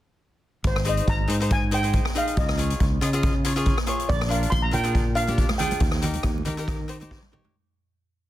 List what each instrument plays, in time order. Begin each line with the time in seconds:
0.64 fingered electric bass G#1, steel pan C5, kick, closed hi-hat
0.76 cross-stick
0.85 cavaquinho D#4 G#4 C5, closed hi-hat
0.89 steel pan D#5
0.97 closed hi-hat
1.07 fingered electric bass G#1, steel pan A#5, kick, closed hi-hat
1.28 fingered electric bass G#2, cavaquinho D#4 G#4 C5, closed hi-hat
1.40 cavaquinho D#4 G#4 C5, closed hi-hat
1.50 steel pan G#5, kick, closed hi-hat
1.71 cavaquinho D#4 G#4 C5, steel pan G5, closed hi-hat
1.83 cavaquinho D#4 G#4 C5, closed hi-hat
1.93 kick, closed hi-hat
2.05 cross-stick
2.15 cavaquinho D#4 G#4 D#5, steel pan F5, closed hi-hat
2.27 closed hi-hat
2.37 fingered electric bass C#2, steel pan D#5, kick, closed hi-hat
2.49 cross-stick
2.58 cavaquinho F4 G#4 C#5, closed hi-hat
2.70 closed hi-hat
2.80 fingered electric bass C#2, kick, closed hi-hat
3.01 fingered electric bass C#3, cavaquinho F4 G#4 D#5, closed hi-hat
3.13 cavaquinho F4 G#4 D#5, closed hi-hat
3.23 kick, closed hi-hat
3.44 cavaquinho F4 G#4 C#5, closed hi-hat
3.56 cavaquinho F4 G#4 C#5, closed hi-hat
3.65 kick, closed hi-hat
3.78 cross-stick
3.87 cavaquinho F4 G#4 C#5, closed hi-hat
3.99 closed hi-hat
4.09 fingered electric bass A#1, steel pan D5, kick, closed hi-hat
4.21 cross-stick
4.29 cavaquinho D4 F4 A#4, steel pan F5, closed hi-hat
4.43 closed hi-hat
4.50 fingered electric bass A#1, steel pan C6, kick, closed hi-hat, low conga
4.62 steel pan A#5
4.71 fingered electric bass A#2, cavaquinho D4 F4 A#4, steel pan G5, closed hi-hat, low conga
4.84 cavaquinho D4 F4 G#4, closed hi-hat
4.95 kick, closed hi-hat
5.15 cavaquinho D4 F4 A#4, steel pan F5, closed hi-hat
5.27 cavaquinho D4 F4 G4, closed hi-hat, high conga
5.38 kick, closed hi-hat
5.49 cross-stick, high conga
5.58 cavaquinho D4 F4 G#4, steel pan G5, closed hi-hat, low conga
5.71 closed hi-hat, high conga
5.80 fingered electric bass D#2, kick, closed hi-hat
5.91 cross-stick
6.02 cavaquinho D#4 G4 A#4, closed hi-hat, low conga
6.13 closed hi-hat, high conga
6.23 fingered electric bass D#2, kick, cross-stick, closed hi-hat, low conga
6.38 high conga
6.45 fingered electric bass D#3, cavaquinho D#4 G4 A#4, closed hi-hat, low conga
6.57 cavaquinho D#4 G4 A#4, closed hi-hat
6.68 kick, cross-stick, closed hi-hat
6.88 cavaquinho D#4 G4 C5, closed hi-hat
7.00 cavaquinho D#4 G4 C5, closed hi-hat, high conga
7.11 kick, snare
7.22 high tom
7.32 cavaquinho D#4 G4 C#5, mid tom, low conga
7.44 floor tom, high conga